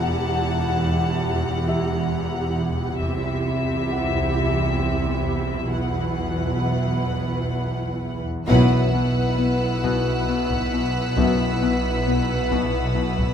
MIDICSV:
0, 0, Header, 1, 14, 480
1, 0, Start_track
1, 0, Tempo, 888889
1, 192, Time_signature, 3, 2, 24, 8
1, 2113, Tempo, 914634
1, 4513, Tempo, 895522
1, 7113, End_track
2, 0, Start_track
2, 0, Title_t, "Violin section"
2, 0, Program_c, 0, 48
2, 0, Note_on_c, 0, 78, 36
2, 0, Note_on_c, 0, 81, 39
2, 0, Note_on_c, 0, 82, 35
2, 408, Note_off_c, 0, 82, 0
2, 837, Note_off_c, 0, 81, 0
2, 837, Note_on_c, 0, 82, 39
2, 1365, Note_off_c, 0, 78, 0
2, 1368, Note_off_c, 0, 82, 0
2, 4512, Note_on_c, 0, 90, 29
2, 4513, Note_on_c, 0, 88, 29
2, 5477, Note_on_c, 0, 95, 34
2, 6653, Note_off_c, 0, 90, 0
2, 7113, Note_off_c, 0, 88, 0
2, 7113, Note_off_c, 0, 95, 0
2, 7113, End_track
3, 0, Start_track
3, 0, Title_t, "Violin section"
3, 0, Program_c, 1, 48
3, 0, Note_on_c, 1, 78, 43
3, 1609, Note_off_c, 1, 78, 0
3, 1625, Note_on_c, 1, 76, 45
3, 3041, Note_off_c, 1, 76, 0
3, 3063, Note_on_c, 1, 78, 31
3, 4384, Note_off_c, 1, 78, 0
3, 4510, Note_on_c, 1, 78, 49
3, 7113, Note_off_c, 1, 78, 0
3, 7113, End_track
4, 0, Start_track
4, 0, Title_t, "Felt piano"
4, 0, Program_c, 2, 0
4, 0, Control_c, 2, 64, 127
4, 0, Note_on_c, 2, 74, 48
4, 168, Note_off_c, 2, 74, 0
4, 908, Note_on_c, 2, 67, 31
4, 909, Note_on_c, 2, 76, 50
4, 1640, Control_c, 2, 64, 0
4, 1722, Control_c, 2, 64, 127
4, 2117, Note_on_c, 2, 78, 38
4, 2326, Note_off_c, 2, 67, 0
4, 2327, Note_off_c, 2, 76, 0
4, 3074, Control_c, 2, 64, 0
4, 3168, Control_c, 2, 64, 127
4, 3534, Note_off_c, 2, 78, 0
4, 3553, Note_on_c, 2, 76, 25
4, 4492, Note_off_c, 2, 76, 0
4, 4522, Control_c, 2, 64, 0
4, 4606, Control_c, 2, 64, 127
4, 5240, Note_on_c, 2, 66, 26
4, 5243, Note_on_c, 2, 90, 35
4, 6655, Note_off_c, 2, 66, 0
4, 6656, Note_off_c, 2, 90, 0
4, 7113, End_track
5, 0, Start_track
5, 0, Title_t, "Violin section"
5, 0, Program_c, 3, 48
5, 4512, Note_on_c, 3, 71, 51
5, 7113, Note_off_c, 3, 71, 0
5, 7113, End_track
6, 0, Start_track
6, 0, Title_t, "Viola section"
6, 0, Program_c, 4, 48
6, 0, Note_on_c, 4, 64, 40
6, 0, Note_on_c, 4, 67, 41
6, 1605, Note_off_c, 4, 64, 0
6, 1606, Note_off_c, 4, 67, 0
6, 1627, Note_on_c, 4, 67, 44
6, 1629, Note_on_c, 4, 64, 47
6, 3042, Note_off_c, 4, 67, 0
6, 3063, Note_on_c, 4, 71, 30
6, 4384, Note_off_c, 4, 71, 0
6, 4385, Note_off_c, 4, 64, 0
6, 4509, Note_on_c, 4, 64, 50
6, 7113, Note_off_c, 4, 64, 0
6, 7113, End_track
7, 0, Start_track
7, 0, Title_t, "French horn section"
7, 0, Program_c, 5, 60
7, 4513, Note_on_c, 5, 64, 56
7, 4515, Note_on_c, 5, 59, 56
7, 4738, Note_off_c, 5, 64, 0
7, 4739, Note_off_c, 5, 59, 0
7, 5955, Note_on_c, 5, 59, 43
7, 5956, Note_on_c, 5, 64, 44
7, 6137, Note_off_c, 5, 59, 0
7, 6138, Note_off_c, 5, 64, 0
7, 7113, End_track
8, 0, Start_track
8, 0, Title_t, "Trombone section"
8, 0, Program_c, 6, 61
8, 4507, Note_on_c, 6, 54, 53
8, 4511, Note_on_c, 6, 42, 51
8, 4735, Note_off_c, 6, 54, 0
8, 4737, Note_off_c, 6, 42, 0
8, 5955, Note_on_c, 6, 42, 40
8, 5957, Note_on_c, 6, 54, 39
8, 6137, Note_off_c, 6, 42, 0
8, 6138, Note_off_c, 6, 54, 0
8, 7113, End_track
9, 0, Start_track
9, 0, Title_t, "Cello section"
9, 0, Program_c, 7, 48
9, 0, Note_on_c, 7, 40, 49
9, 1625, Note_on_c, 7, 48, 53
9, 1629, Note_off_c, 7, 40, 0
9, 3041, Note_off_c, 7, 48, 0
9, 3060, Note_on_c, 7, 47, 40
9, 4404, Note_off_c, 7, 47, 0
9, 4510, Note_on_c, 7, 47, 59
9, 7113, Note_off_c, 7, 47, 0
9, 7113, End_track
10, 0, Start_track
10, 0, Title_t, "Harp"
10, 0, Program_c, 8, 46
10, 4512, Note_on_c, 8, 47, 45
10, 4747, Note_off_c, 8, 47, 0
10, 4753, Note_on_c, 8, 47, 36
10, 4991, Note_on_c, 8, 59, 36
10, 5230, Note_off_c, 8, 47, 0
10, 5236, Note_on_c, 8, 47, 51
10, 5470, Note_off_c, 8, 47, 0
10, 5476, Note_on_c, 8, 47, 37
10, 5710, Note_off_c, 8, 47, 0
10, 5716, Note_on_c, 8, 47, 35
10, 5946, Note_off_c, 8, 47, 0
10, 5953, Note_on_c, 8, 47, 48
10, 6189, Note_off_c, 8, 47, 0
10, 6195, Note_on_c, 8, 47, 38
10, 6428, Note_off_c, 8, 59, 0
10, 6434, Note_on_c, 8, 59, 37
10, 6666, Note_off_c, 8, 47, 0
10, 6673, Note_on_c, 8, 47, 54
10, 6903, Note_off_c, 8, 47, 0
10, 6909, Note_on_c, 8, 47, 38
10, 7113, Note_off_c, 8, 47, 0
10, 7113, Note_off_c, 8, 59, 0
10, 7113, End_track
11, 0, Start_track
11, 0, Title_t, "Timpani"
11, 0, Program_c, 10, 47
11, 4511, Note_on_c, 10, 47, 56
11, 5215, Note_off_c, 10, 47, 0
11, 7113, End_track
12, 0, Start_track
12, 0, Title_t, "Synth drone"
12, 0, Program_c, 11, 95
12, 0, Note_on_c, 11, 40, 60
12, 1605, Note_off_c, 11, 40, 0
12, 1618, Note_on_c, 11, 40, 63
12, 4486, Note_off_c, 11, 40, 0
12, 4513, Note_on_c, 11, 35, 59
12, 7113, Note_off_c, 11, 35, 0
12, 7113, End_track
13, 0, Start_track
13, 0, Title_t, "Double bass section"
13, 0, Program_c, 12, 48
13, 0, Note_on_c, 12, 28, 47
13, 1626, Note_on_c, 12, 36, 52
13, 1629, Note_off_c, 12, 28, 0
13, 3042, Note_off_c, 12, 36, 0
13, 3063, Note_on_c, 12, 35, 38
13, 4406, Note_off_c, 12, 35, 0
13, 4509, Note_on_c, 12, 35, 55
13, 7113, Note_off_c, 12, 35, 0
13, 7113, End_track
14, 0, Start_track
14, 0, Title_t, "Taiko and cinematic ensemble drums"
14, 1629, Note_on_c, 9, 41, 45
14, 1683, Note_off_c, 9, 41, 0
14, 4511, Note_on_c, 9, 41, 71
14, 4565, Note_off_c, 9, 41, 0
14, 5235, Note_on_c, 9, 41, 60
14, 5289, Note_off_c, 9, 41, 0
14, 5595, Note_on_c, 9, 41, 58
14, 5649, Note_off_c, 9, 41, 0
14, 5954, Note_on_c, 9, 41, 72
14, 6008, Note_off_c, 9, 41, 0
14, 6673, Note_on_c, 9, 41, 62
14, 6726, Note_off_c, 9, 41, 0
14, 7033, Note_on_c, 9, 41, 54
14, 7086, Note_off_c, 9, 41, 0
14, 7113, End_track
0, 0, End_of_file